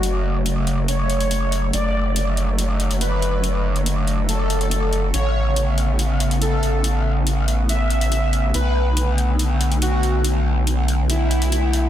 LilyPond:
<<
  \new Staff \with { instrumentName = "Supersaw synth" } { \time 4/4 \key d \lydian \tempo 4 = 141 fis'8 r4. cis''2 | d''4. r4. b'4~ | b'8 r4. a'2 | cis''4. r4. a'4~ |
a'8 r4. e''2 | b'4. r4. fis'4~ | fis'8 r4. e'2 | }
  \new Staff \with { instrumentName = "Ambient pad" } { \clef bass \time 4/4 \key d \lydian << { a1~ | a1~ | a1 | b1~ |
b1~ | b1~ | b1 | } \\ { <cis fis>1 | <d fis>1~ | <d fis>1 | cis1~ |
cis1 | <d a>1~ | <d a>1 | } >> }
  \new Staff \with { instrumentName = "Wobble bass" } { \clef bass \time 4/4 \key d \lydian fis,,1 | fis,,1~ | fis,,1 | a,,1~ |
a,,1 | b,,1~ | b,,1 | }
  \new DrumStaff \with { instrumentName = "Drums" } \drummode { \time 4/4 hh4 hh8 hh8 hh8 hh16 hh16 hh8 hh8 | hh4 hh8 hh8 hh8 hh16 hh16 hh8 hh8 | hh8. hh16 hh8 hh8 hh8 hh16 hh16 hh8 hh8 | hh4 hh8 hh8 hh8 hh16 hh16 hh8 hh8 |
hh4 hh8 hh8 hh8 hh16 hh16 hh8 hh8 | hh4 hh8 hh8 hh8 hh16 hh16 hh8 hh8 | hh4 hh8 hh8 hh8 hh16 hh16 hh8 hh8 | }
>>